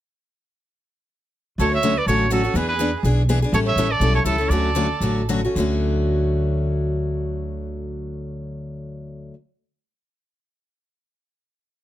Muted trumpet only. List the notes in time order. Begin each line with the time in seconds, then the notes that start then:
1.60 C#5
1.74 E5
1.98 D5
2.08 C#5
2.32 A4
2.56 B4
2.69 B4
3.55 C#5
3.68 E5
3.91 D5
4.15 C#5
4.25 A4
4.49 D5